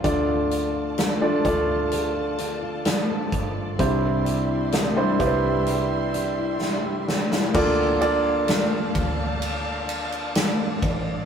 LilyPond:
<<
  \new Staff \with { instrumentName = "String section" } { \time 4/4 \key bes \lydian \tempo 4 = 64 <f' a' d'' a''>1 | <g' e'' c'''>1 | <d'' f'' a''>1 | }
  \new Staff \with { instrumentName = "Grand piano" } { \time 4/4 \key bes \lydian <a d' f' d''>4~ <a d' f' d''>16 <a d' f' d''>16 <a d' f' d''>2 r8 | <g d' e' c''>4~ <g d' e' c''>16 <g d' e' c''>16 <g d' e' b' c''>2 r8 | <bes d' f' a' d''>8 <bes d' f' a' d''>2 r4. | }
  \new Staff \with { instrumentName = "Grand piano" } { \clef bass \time 4/4 \key bes \lydian d4. r2 r8 | c4. r2 r8 | d4. r2 r8 | }
  \new Staff \with { instrumentName = "Steel-string acoustic guitar" } { \time 4/4 \key bes \lydian d16 f'16 d'16 f'16 f16 a'16 d'16 f'16 d16 f'16 d'16 f'16 f16 a'16 d'16 f'16 | c16 e'16 d'16 e'16 g16 g'16 d'16 e'16 c16 e'16 d'16 e'16 g16 g'16 d'16 e'16 | r1 | }
  \new Staff \with { instrumentName = "Fingered electric bass" } { \clef bass \time 4/4 \key bes \lydian d,4. d,2 g,,8 | c,4. c,2 r8 | d,4. d,2 a,,8 | }
  \new DrumStaff \with { instrumentName = "Drums" } \drummode { \time 4/4 <hh bd>8 hh8 <hh sn>8 <hh bd>8 hh8 hh8 <hh sn>8 <hh bd>8 | <hh bd>8 hh8 <hh sn>8 <hh bd>8 hh8 hh8 sn8 sn16 sn16 | <cymc bd>8 cymr8 <cymr sn>8 <bd cymr>8 cymr8 cymr16 cymr16 <cymr sn>8 <bd cymr>8 | }
>>